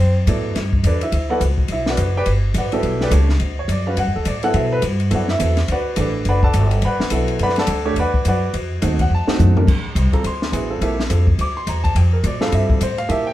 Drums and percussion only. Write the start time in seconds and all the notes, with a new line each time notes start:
0.27 hi-hat pedal, ride
0.56 snare, ride
0.73 kick
0.84 hi-hat pedal, ride
1.01 ride
1.12 ride
1.41 hi-hat pedal, ride
1.58 kick
1.68 ride
1.86 snare
1.97 hi-hat pedal, ride
2.26 ride
2.54 hi-hat pedal, ride
2.72 ride
2.83 ride
3.01 snare
3.11 hi-hat pedal, ride
3.29 snare
3.40 ride
3.69 hi-hat pedal, ride
3.97 ride
4.25 hi-hat pedal, ride
4.43 ride
4.54 ride
4.82 hi-hat pedal, ride
5.00 ride
5.11 ride
5.28 snare
5.40 hi-hat pedal, ride
5.57 snare, ride
5.68 ride
5.96 hi-hat pedal, ride
6.25 ride
6.43 kick
6.53 hi-hat pedal, ride
6.71 ride
6.82 ride
7.00 snare
7.10 hi-hat pedal, ride
7.28 ride
7.39 ride
7.49 snare
7.56 snare, ride
7.67 hi-hat pedal, ride
7.96 ride
8.14 kick
8.25 hi-hat pedal, ride
8.54 ride
8.82 hi-hat pedal, ride
8.99 kick, ride
9.28 snare
9.39 floor tom, hi-hat pedal
9.57 floor tom
9.68 kick, crash
9.96 hi-hat pedal, ride
10.13 kick, ride
10.24 ride
10.42 snare
10.53 hi-hat pedal, ride
10.81 ride
11.00 snare
11.10 hi-hat pedal, ride
11.27 kick
11.39 ride
11.67 hi-hat pedal, ride
11.84 kick, ride
11.96 ride
12.24 hi-hat pedal, ride
12.41 snare
12.52 ride
12.70 kick
12.81 hi-hat pedal, ride
12.98 ride
13.09 ride